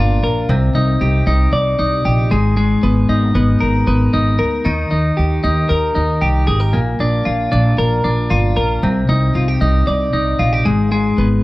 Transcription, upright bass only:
0.00 0.18 G1 medium
0.22 0.44 A#1 medium
0.49 0.70 C2 loud
0.75 0.96 C2 medium
1.01 1.23 C2 medium
1.27 1.48 C2 medium
1.53 1.74 C2 medium
1.79 2.01 C2 medium
2.05 2.27 A#1 medium
2.32 2.74 G#1 medium
2.83 3.05 G#1 medium
3.09 3.31 G#1 medium
3.35 3.57 G#1 medium
3.62 3.83 G#1 medium
3.88 4.09 G#1 medium
4.14 4.35 G#1 medium
4.40 4.61 D2 medium
4.66 4.87 D#2 loud
4.92 5.14 D#2 medium
5.19 5.40 D#2 medium
5.44 5.66 D#2 medium
5.70 5.92 D#2 medium
5.96 6.18 D#2 medium
6.22 6.43 C2 medium
6.48 6.70 G#1 medium
6.74 6.96 A#1 medium
7.00 7.22 A#1 medium
7.26 7.48 A#1 medium
7.52 7.74 A#1 loud
7.79 8.00 A#1 medium
8.05 8.26 A#1 medium
8.31 8.52 G1 medium
8.57 8.78 A#1 medium
8.83 9.04 C2 loud
9.09 9.30 C2 loud
9.35 9.57 C2 medium
9.62 9.83 C2 loud
9.88 10.09 C2 medium
10.14 10.35 C2 medium
10.39 10.61 A#1 medium
10.66 11.08 G#1 medium
11.18 11.39 G#1 medium

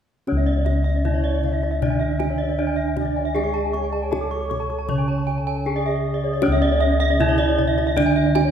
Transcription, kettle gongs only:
0.27 2.54 C#4 medium
0.32 4.87 C#2 medium
1.04 1.12 D4 soft
2.59 2.67 D4 soft
3.36 5.62 G#4 medium
4.12 4.20 D4 soft
4.89 7.16 C#3 medium
5.66 5.74 D4 soft
6.43 8.51 C#4 medium
6.48 8.51 C#2 medium
7.20 7.28 D4 soft

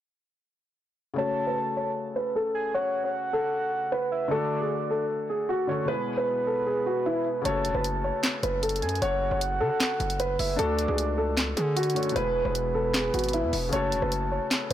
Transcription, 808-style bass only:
7.45 7.66 F#1 loud
7.65 7.74 E1 loud
7.75 8.12 F#1 loud
8.43 8.84 F#1 loud
8.82 9.01 F#2 loud
9.02 9.30 F#1 loud
9.31 9.62 F#1 loud
9.61 9.70 C#3 loud
10.00 10.38 F#1 loud
10.39 10.58 F#1 loud
10.59 10.87 D2 loud
10.88 11.54 C#2 loud
11.57 12.13 D3 loud
12.16 12.44 E1 loud
12.45 13.11 E1 loud
13.14 13.45 G#1 loud
13.43 13.52 E2 loud
13.53 13.72 E1 loud
13.73 13.94 F#1 loud
13.92 14.01 E1 loud
14.02 14.40 F#1 loud

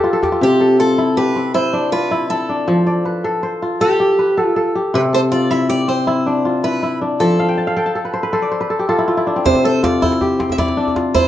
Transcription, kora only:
0.00 0.47 F3 medium
0.00 0.32 F4 medium
0.00 0.22 G4 medium
0.00 0.13 A4 medium
0.00 0.47 B4 medium
0.00 0.49 D5 medium
0.00 0.19 F5 medium
0.13 0.60 A4 medium
0.22 1.17 G4 medium
0.32 0.79 F4 medium
0.41 2.73 C3 medium
0.60 1.92 A4 medium
0.79 1.61 F4 medium
0.98 1.54 E4 medium
1.17 2.58 G4 medium
1.36 3.11 C4 medium
1.55 1.98 E4 medium
1.73 2.49 D4 medium
1.92 3.44 F4 medium
2.11 2.30 E4 medium
2.30 3.68 E4 medium
2.49 4.17 D4 medium
2.68 4.99 F3 medium
2.87 3.97 D5 medium
3.05 4.18 B4 medium
3.24 3.80 A4 medium
3.43 4.25 C5 medium
3.62 5.14 F4 medium
3.81 4.37 A4 medium
4.00 4.75 G4 medium
4.19 5.00 B4 medium
4.37 4.56 A4 medium
4.56 5.13 A4 medium
4.75 5.69 G4 medium
4.94 7.25 C3 medium
5.13 6.45 A4 medium
5.32 6.13 F4 medium
5.51 6.07 E4 medium
5.69 7.10 G4 medium
5.88 7.68 C4 medium
6.07 6.51 E4 medium
6.26 7.01 D4 medium
6.45 7.97 F4 medium
6.64 6.82 E4 medium
6.83 7.45 E4 medium
7.01 8.69 D4 medium
7.20 9.51 F3 medium
7.39 7.67 F5 medium
7.49 7.76 G5 medium
7.58 7.85 A5 medium
7.67 8.67 F5 medium
7.76 7.95 A4 medium
7.76 8.70 G5 medium
7.86 8.73 A5 medium
7.95 8.32 A4 medium
8.05 8.23 B4 medium
8.14 8.33 C5 medium
8.23 8.58 B4 medium
8.33 8.70 A4 medium
8.33 8.51 C5 medium
8.42 9.53 D5 medium
8.52 9.70 C5 medium
8.61 9.42 B4 medium
8.70 8.88 A4 medium
8.79 10.21 G4 medium
8.89 9.07 F4 medium
8.89 9.64 A4 medium
8.98 9.17 E4 medium
9.08 9.83 F4 medium
9.17 9.89 E4 medium
9.27 10.77 D4 medium
9.36 10.39 C4 medium
9.45 11.28 C3 medium
9.64 10.96 A4 medium
9.83 10.65 F4 medium
10.02 10.58 E4 medium
10.21 11.28 G4 medium
10.39 11.28 C4 medium
10.59 11.02 E4 medium
10.77 11.28 D4 medium
10.96 11.28 F4 medium
11.15 11.28 E4 medium

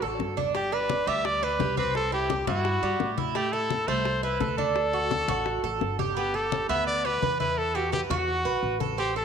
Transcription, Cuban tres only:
0.02 0.36 A4 medium
0.37 0.54 D4 medium
0.55 0.72 G3 medium
0.72 1.06 D4 medium
1.07 1.41 G3 medium
1.43 1.60 D4 medium
1.60 1.77 G4 medium
1.77 2.11 C4 medium
2.12 2.29 E4 medium
2.30 2.47 G4 medium
2.48 2.82 E4 medium
2.83 3.17 G3 medium
3.18 3.35 E4 medium
3.35 3.52 A3 medium
3.53 3.87 E4 medium
3.88 4.22 A3 medium
4.23 4.40 E4 medium
4.41 4.58 A4 medium
4.58 4.92 D4 medium
4.93 5.10 F#4 medium
5.11 5.28 A4 medium
5.29 5.63 F#4 medium
5.64 5.98 A4 medium
5.99 6.16 G4 medium
6.17 6.34 B3 medium
6.34 6.68 G4 medium
6.69 7.03 B3 medium
7.05 7.22 G4 medium
7.22 7.39 B4 medium
7.40 7.74 E4 medium
7.75 7.92 F#4 medium
7.92 8.10 B4 medium
8.10 8.44 F#4 medium
8.45 8.79 B4 medium
8.80 8.98 A4 medium
8.98 9.15 C4 medium
9.16 9.25 A4 medium

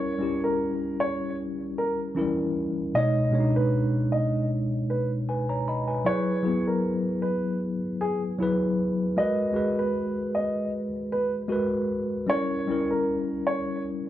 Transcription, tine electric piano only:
0.00 0.14 G3 medium
0.00 0.15 C#4 medium
0.00 0.15 E4 medium
0.00 0.16 A#4 medium
0.18 1.51 G3 medium
0.18 1.52 C#4 medium
0.18 1.52 E4 medium
0.22 1.53 G4 medium
2.15 2.23 E3 medium
2.15 2.83 C#4 medium
2.15 2.83 E4 medium
2.19 2.85 G3 medium
2.19 2.84 A#4 medium
2.95 3.28 B2 medium
2.95 3.28 G#3 medium
2.95 3.29 D#4 medium
2.95 3.30 C#5 medium
3.31 4.63 B2 medium
3.31 4.64 G#3 medium
3.31 3.41 D4 medium
3.31 4.65 C#5 medium
3.40 4.68 D#4 medium
5.29 5.50 B4 medium
5.29 5.50 G#5 medium
5.49 5.66 C#5 medium
5.49 5.66 A#5 medium
5.68 5.89 D#5 medium
5.68 5.89 B5 medium
5.88 6.07 B4 soft
5.88 6.25 G#5 medium
6.04 6.38 F#3 medium
6.04 6.39 E4 medium
6.04 6.40 G#4 medium
6.04 6.40 B4 medium
6.43 7.75 F#3 medium
6.43 7.77 B3 medium
6.43 7.76 E4 medium
6.43 7.76 G#4 medium
8.39 9.06 F#3 medium
8.39 9.06 E4 medium
8.39 9.07 G#4 medium
8.43 9.08 B4 medium
9.17 9.50 G#3 medium
9.17 9.51 F#4 medium
9.17 9.52 A#4 medium
9.17 9.52 B4 medium
9.52 10.86 G#3 medium
9.52 10.86 F#4 medium
9.52 10.87 G#4 medium
9.52 10.88 B4 medium
11.48 12.16 G#3 medium
11.48 12.17 F#4 medium
11.48 12.18 A#4 medium
11.52 12.18 B4 medium
12.27 12.61 G3 medium
12.27 12.62 C#4 medium
12.27 12.63 E4 medium
12.27 12.63 A#4 medium
12.67 13.99 G3 medium
12.67 14.00 C#4 medium
12.67 14.00 E4 medium
12.71 14.01 A#4 medium

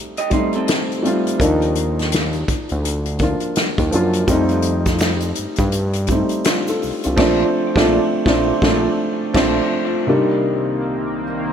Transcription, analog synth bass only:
1.40 2.44 D#2 loud
2.49 2.58 D2 soft
2.72 3.35 D2 medium
3.79 3.91 D#2 medium
3.94 4.25 F#2 medium
4.29 5.33 F2 loud
5.39 5.47 G2 soft
5.59 6.23 G2 loud
6.84 6.92 C2 soft
7.06 7.18 C2 medium
7.19 7.44 A#1 loud
7.77 7.99 A#1 loud
8.27 8.53 A#1 loud
8.63 8.89 A#1 loud
9.35 9.61 A#1 medium

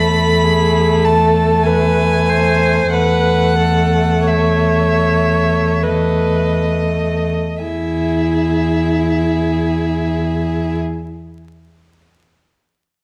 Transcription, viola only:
0.00 0.47 A4 soft
0.45 1.06 G#4 soft
1.05 1.68 A4 soft
1.66 2.31 B4 soft
2.29 2.95 C5 soft
2.93 3.58 B4 soft
3.59 4.27 A4 soft
4.28 5.85 C#5 soft
5.83 6.74 B4 soft
7.63 10.77 E4 soft

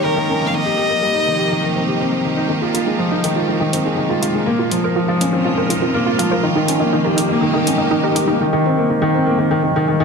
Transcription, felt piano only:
0.00 0.04 D#3 medium
0.00 0.56 G3 medium
0.00 0.40 A#3 medium
0.00 0.29 C#4 medium
0.00 0.56 D#4 medium
0.00 0.56 G4 medium
0.04 0.15 D#3 medium
0.16 0.28 D#3 medium
0.29 0.41 C#4 medium
0.40 0.53 A#3 medium
0.53 0.60 D#3 medium
0.65 0.76 G4 medium
0.78 0.85 G4 medium
0.90 1.02 A#3 medium
1.02 1.14 G3 medium
1.14 1.22 D#4 medium
1.27 1.39 D#3 medium
1.38 1.51 G4 medium
1.51 1.61 D#3 medium
1.63 1.75 D#3 medium
1.75 1.88 C4 medium
1.88 2.00 G4 medium
2.00 2.11 C4 medium
2.13 2.20 C4 medium
2.25 2.37 D#3 medium
2.37 2.44 D#4 medium
2.49 2.57 D#3 medium
2.62 2.72 F4 medium
2.74 2.81 F4 medium
2.86 2.98 G#3 medium
2.99 3.11 F3 medium
3.11 3.18 D#4 medium
3.23 3.35 D#3 medium
3.36 3.48 F4 medium
3.48 3.59 D#3 medium
3.60 3.72 D#3 medium
3.73 3.85 C4 medium
3.85 3.97 G#3 medium
3.97 4.04 D#3 medium
4.09 4.20 F4 medium
4.22 4.29 F4 medium
4.34 4.46 G#3 medium
4.46 4.58 A#3 medium
4.59 4.66 F4 medium
4.71 4.83 F3 medium
4.84 4.96 A#4 medium
4.96 5.07 F3 medium
5.08 5.20 F3 medium
5.21 5.33 C#4 medium
5.33 5.45 C4 medium
5.45 5.52 F3 medium
5.57 5.68 A#4 medium
5.70 5.77 A#4 medium
5.81 5.94 C4 medium
5.94 6.06 A#3 loud
6.07 6.14 F4 medium
6.19 6.31 F3 medium
6.32 6.43 A#4 medium
6.43 6.54 D#3 medium
6.56 6.68 D#3 medium
6.68 6.80 C#4 medium
6.80 6.92 A#3 medium
6.93 7.00 D#3 medium
7.05 7.16 G4 medium
7.18 7.25 G4 medium
7.30 7.40 A#3 medium
7.42 7.53 D#3 medium
7.55 7.66 D#3 medium
7.67 7.78 C#4 medium
7.79 7.91 A#3 medium
7.91 7.98 D#3 medium
8.03 8.15 G4 medium
8.16 8.23 G4 medium
8.29 8.39 A#3 medium
8.41 8.51 D#3 medium
8.53 8.64 D#3 loud
8.65 8.77 C4 medium
8.78 8.88 A#3 medium
8.90 9.00 D#3 medium
9.02 9.14 D#3 loud
9.14 9.26 C4 medium
9.26 9.37 A#3 medium
9.38 9.49 D#3 medium
9.51 9.61 D#3 loud
9.63 9.74 D#3 medium
9.76 9.86 D#3 loud
9.88 9.99 D#3 medium
10.00 10.04 D#3 loud

